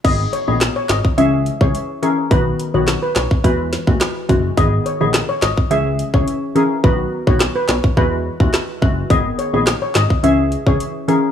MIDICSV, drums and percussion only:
0, 0, Header, 1, 2, 480
1, 0, Start_track
1, 0, Key_signature, 5, "minor"
1, 0, Tempo, 566038
1, 39, Time_signature, 4, 2, 24, 8
1, 9598, End_track
2, 0, Start_track
2, 0, Title_t, "Drums"
2, 39, Note_on_c, 9, 36, 104
2, 39, Note_on_c, 9, 42, 58
2, 39, Note_on_c, 9, 49, 83
2, 124, Note_off_c, 9, 36, 0
2, 124, Note_off_c, 9, 42, 0
2, 124, Note_off_c, 9, 49, 0
2, 281, Note_on_c, 9, 42, 53
2, 365, Note_off_c, 9, 42, 0
2, 519, Note_on_c, 9, 37, 67
2, 519, Note_on_c, 9, 38, 113
2, 521, Note_on_c, 9, 39, 87
2, 522, Note_on_c, 9, 42, 75
2, 604, Note_off_c, 9, 37, 0
2, 604, Note_off_c, 9, 38, 0
2, 606, Note_off_c, 9, 39, 0
2, 607, Note_off_c, 9, 42, 0
2, 758, Note_on_c, 9, 38, 102
2, 759, Note_on_c, 9, 42, 57
2, 760, Note_on_c, 9, 39, 84
2, 843, Note_off_c, 9, 38, 0
2, 843, Note_off_c, 9, 42, 0
2, 845, Note_off_c, 9, 39, 0
2, 887, Note_on_c, 9, 36, 85
2, 972, Note_off_c, 9, 36, 0
2, 1000, Note_on_c, 9, 42, 74
2, 1085, Note_off_c, 9, 42, 0
2, 1240, Note_on_c, 9, 42, 51
2, 1325, Note_off_c, 9, 42, 0
2, 1364, Note_on_c, 9, 36, 94
2, 1449, Note_off_c, 9, 36, 0
2, 1481, Note_on_c, 9, 42, 66
2, 1566, Note_off_c, 9, 42, 0
2, 1720, Note_on_c, 9, 42, 57
2, 1805, Note_off_c, 9, 42, 0
2, 1959, Note_on_c, 9, 36, 106
2, 1959, Note_on_c, 9, 42, 59
2, 2044, Note_off_c, 9, 36, 0
2, 2044, Note_off_c, 9, 42, 0
2, 2201, Note_on_c, 9, 42, 53
2, 2286, Note_off_c, 9, 42, 0
2, 2439, Note_on_c, 9, 37, 68
2, 2439, Note_on_c, 9, 38, 112
2, 2441, Note_on_c, 9, 39, 90
2, 2442, Note_on_c, 9, 42, 73
2, 2524, Note_off_c, 9, 37, 0
2, 2524, Note_off_c, 9, 38, 0
2, 2526, Note_off_c, 9, 39, 0
2, 2527, Note_off_c, 9, 42, 0
2, 2679, Note_on_c, 9, 38, 105
2, 2679, Note_on_c, 9, 42, 59
2, 2681, Note_on_c, 9, 39, 83
2, 2763, Note_off_c, 9, 38, 0
2, 2764, Note_off_c, 9, 42, 0
2, 2765, Note_off_c, 9, 39, 0
2, 2807, Note_on_c, 9, 36, 87
2, 2892, Note_off_c, 9, 36, 0
2, 2920, Note_on_c, 9, 36, 86
2, 2920, Note_on_c, 9, 42, 80
2, 3005, Note_off_c, 9, 36, 0
2, 3005, Note_off_c, 9, 42, 0
2, 3160, Note_on_c, 9, 38, 64
2, 3160, Note_on_c, 9, 42, 50
2, 3245, Note_off_c, 9, 38, 0
2, 3245, Note_off_c, 9, 42, 0
2, 3284, Note_on_c, 9, 36, 88
2, 3369, Note_off_c, 9, 36, 0
2, 3400, Note_on_c, 9, 38, 107
2, 3401, Note_on_c, 9, 42, 67
2, 3402, Note_on_c, 9, 39, 87
2, 3485, Note_off_c, 9, 38, 0
2, 3486, Note_off_c, 9, 42, 0
2, 3487, Note_off_c, 9, 39, 0
2, 3640, Note_on_c, 9, 42, 57
2, 3641, Note_on_c, 9, 36, 94
2, 3725, Note_off_c, 9, 42, 0
2, 3726, Note_off_c, 9, 36, 0
2, 3879, Note_on_c, 9, 36, 110
2, 3880, Note_on_c, 9, 42, 57
2, 3964, Note_off_c, 9, 36, 0
2, 3964, Note_off_c, 9, 42, 0
2, 4121, Note_on_c, 9, 42, 55
2, 4206, Note_off_c, 9, 42, 0
2, 4359, Note_on_c, 9, 37, 66
2, 4359, Note_on_c, 9, 38, 116
2, 4361, Note_on_c, 9, 39, 87
2, 4362, Note_on_c, 9, 42, 77
2, 4444, Note_off_c, 9, 37, 0
2, 4444, Note_off_c, 9, 38, 0
2, 4446, Note_off_c, 9, 39, 0
2, 4447, Note_off_c, 9, 42, 0
2, 4599, Note_on_c, 9, 38, 106
2, 4600, Note_on_c, 9, 42, 56
2, 4601, Note_on_c, 9, 39, 83
2, 4684, Note_off_c, 9, 38, 0
2, 4684, Note_off_c, 9, 42, 0
2, 4686, Note_off_c, 9, 39, 0
2, 4728, Note_on_c, 9, 36, 83
2, 4812, Note_off_c, 9, 36, 0
2, 4841, Note_on_c, 9, 42, 74
2, 4926, Note_off_c, 9, 42, 0
2, 5080, Note_on_c, 9, 42, 51
2, 5165, Note_off_c, 9, 42, 0
2, 5205, Note_on_c, 9, 36, 89
2, 5289, Note_off_c, 9, 36, 0
2, 5322, Note_on_c, 9, 42, 69
2, 5406, Note_off_c, 9, 42, 0
2, 5560, Note_on_c, 9, 42, 56
2, 5645, Note_off_c, 9, 42, 0
2, 5799, Note_on_c, 9, 36, 108
2, 5884, Note_off_c, 9, 36, 0
2, 6166, Note_on_c, 9, 36, 92
2, 6251, Note_off_c, 9, 36, 0
2, 6279, Note_on_c, 9, 38, 111
2, 6280, Note_on_c, 9, 39, 91
2, 6363, Note_off_c, 9, 38, 0
2, 6365, Note_off_c, 9, 39, 0
2, 6518, Note_on_c, 9, 38, 102
2, 6520, Note_on_c, 9, 39, 84
2, 6603, Note_off_c, 9, 38, 0
2, 6605, Note_off_c, 9, 39, 0
2, 6647, Note_on_c, 9, 36, 91
2, 6732, Note_off_c, 9, 36, 0
2, 6760, Note_on_c, 9, 36, 90
2, 6844, Note_off_c, 9, 36, 0
2, 7124, Note_on_c, 9, 36, 86
2, 7209, Note_off_c, 9, 36, 0
2, 7240, Note_on_c, 9, 37, 87
2, 7240, Note_on_c, 9, 38, 100
2, 7242, Note_on_c, 9, 39, 85
2, 7324, Note_off_c, 9, 37, 0
2, 7324, Note_off_c, 9, 38, 0
2, 7326, Note_off_c, 9, 39, 0
2, 7481, Note_on_c, 9, 36, 96
2, 7566, Note_off_c, 9, 36, 0
2, 7719, Note_on_c, 9, 36, 106
2, 7719, Note_on_c, 9, 42, 59
2, 7803, Note_off_c, 9, 42, 0
2, 7804, Note_off_c, 9, 36, 0
2, 7961, Note_on_c, 9, 42, 57
2, 8046, Note_off_c, 9, 42, 0
2, 8199, Note_on_c, 9, 37, 67
2, 8199, Note_on_c, 9, 38, 114
2, 8201, Note_on_c, 9, 39, 91
2, 8202, Note_on_c, 9, 42, 75
2, 8284, Note_off_c, 9, 37, 0
2, 8284, Note_off_c, 9, 38, 0
2, 8286, Note_off_c, 9, 39, 0
2, 8287, Note_off_c, 9, 42, 0
2, 8439, Note_on_c, 9, 38, 102
2, 8440, Note_on_c, 9, 42, 58
2, 8441, Note_on_c, 9, 39, 82
2, 8524, Note_off_c, 9, 38, 0
2, 8524, Note_off_c, 9, 42, 0
2, 8526, Note_off_c, 9, 39, 0
2, 8567, Note_on_c, 9, 36, 86
2, 8652, Note_off_c, 9, 36, 0
2, 8681, Note_on_c, 9, 42, 77
2, 8766, Note_off_c, 9, 42, 0
2, 8920, Note_on_c, 9, 42, 49
2, 9005, Note_off_c, 9, 42, 0
2, 9044, Note_on_c, 9, 36, 87
2, 9129, Note_off_c, 9, 36, 0
2, 9161, Note_on_c, 9, 42, 69
2, 9246, Note_off_c, 9, 42, 0
2, 9400, Note_on_c, 9, 42, 60
2, 9485, Note_off_c, 9, 42, 0
2, 9598, End_track
0, 0, End_of_file